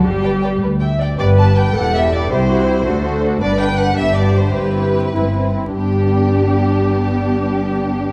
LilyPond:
<<
  \new Staff \with { instrumentName = "Violin section" } { \time 6/8 \key g \major \tempo 4. = 104 r8 g''8 g''8 r8 g''8 g''8 | d''8 a''8 g''8 fis''8 e''8 d''8 | c''2~ c''8 r8 | d''8 g''8 fis''8 e''8 d''8 c''8 |
b'2~ b'8 r8 | g'2.~ | g'2. | }
  \new Staff \with { instrumentName = "Viola section" } { \time 6/8 \key g \major g'4. r4. | b'4. a'4. | g'8 fis'8 e'8 a'4. | b'4. g'4.~ |
g'4. e'8. r8. | <g b>2.~ | <g b>2. | }
  \new Staff \with { instrumentName = "Violin section" } { \time 6/8 \key g \major r8 <b' d''>8 <b' d''>8 b'8 e''8 d''8 | <b g'>8 <b g'>8 <b g'>8 <b g'>8 <b g'>8 <b g'>8 | <e' g'>8 <e' g'>8 <e' g'>8 <d' fis'>8 <d' fis'>8 <d' fis'>8 | <b d'>8 <b d'>8 <b d'>8 <b d'>8 <b d'>8 <b d'>8 |
<c' e'>8 <c' e'>8 <c' e'>8 <c' e'>8 <c' e'>8 <c' e'>8 | <d' g'>2.~ | <d' g'>2. | }
  \new Staff \with { instrumentName = "Cello section" } { \clef bass \time 6/8 \key g \major g4. r4. | g,4. e,4. | c,4. d,4. | g,4. g,4. |
g,4. g,4. | g,2.~ | g,2. | }
  \new Staff \with { instrumentName = "Double bass section" } { \clef bass \time 6/8 \key g \major g,,4. d,4. | g,,4. e,,4. | c,4. d,4. | g,,4. g,,4. |
g,,4. g,,4. | g,,2.~ | g,,2. | }
>>